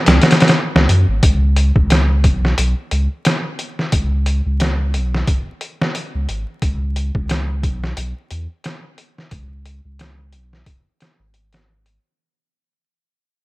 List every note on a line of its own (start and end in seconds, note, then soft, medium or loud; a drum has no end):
0.06 0.20 C#2 loud
0.06 snare loud
0.06 closed hi-hat medium
0.21 snare medium
0.21 closed hi-hat medium
0.31 snare medium
0.31 closed hi-hat medium
0.40 snare medium
0.40 closed hi-hat medium
0.48 snare medium
0.48 closed hi-hat medium
0.75 0.87 C#2 medium
0.75 snare medium
0.89 1.06 F#2 medium
0.89 closed hi-hat medium
1.08 1.21 G#1 medium
1.23 1.72 C#2 loud
1.23 kick loud
1.23 closed hi-hat medium
1.56 closed hi-hat medium
1.76 2.26 C#2 loud
1.76 kick medium
1.90 snare loud
1.90 closed hi-hat medium
2.24 2.54 B1 medium
2.24 kick medium
2.24 closed hi-hat medium
2.45 snare soft
2.58 2.74 B1 loud
2.58 closed hi-hat medium
2.91 3.08 C#2 medium
2.91 closed hi-hat medium
3.25 snare loud
3.25 closed hi-hat medium
3.59 closed hi-hat medium
3.79 snare soft
3.92 4.41 C#2 loud
3.92 kick loud
3.92 closed hi-hat medium
4.26 closed hi-hat medium
4.46 4.96 C#2 medium
4.60 snare loud
4.60 closed hi-hat medium
4.94 5.24 B1 loud
4.94 closed hi-hat medium
5.15 snare soft
5.27 kick loud
5.27 closed hi-hat medium
5.61 closed hi-hat medium
5.81 snare loud
5.95 closed hi-hat medium
6.15 6.27 C#2 loud
6.29 6.45 G#1 medium
6.29 closed hi-hat medium
6.62 7.11 C#2 medium
6.62 kick loud
6.62 closed hi-hat medium
6.96 closed hi-hat medium
7.15 7.65 C#2 medium
7.15 kick medium
7.29 snare loud
7.29 closed hi-hat medium
7.63 7.93 B1 loud
7.63 kick medium
7.63 closed hi-hat medium
7.84 snare soft
7.97 8.13 B1 medium
7.97 closed hi-hat medium
8.31 8.47 E2 medium
8.31 closed hi-hat medium
8.64 snare loud
8.64 closed hi-hat medium
8.98 closed hi-hat medium
9.18 snare soft
9.31 9.81 C#2 loud
9.31 kick loud
9.31 closed hi-hat medium
9.66 closed hi-hat medium
9.85 10.35 C#2 medium
9.99 snare loud
9.99 closed hi-hat medium
10.33 10.63 B1 medium
10.33 closed hi-hat medium
10.53 snare soft
10.66 kick loud
10.66 closed hi-hat medium
11.00 snare medium
11.00 closed hi-hat medium
11.19 11.98 G#1 loud
11.34 closed hi-hat medium
11.53 snare medium
11.53 closed hi-hat medium
11.86 closed hi-hat medium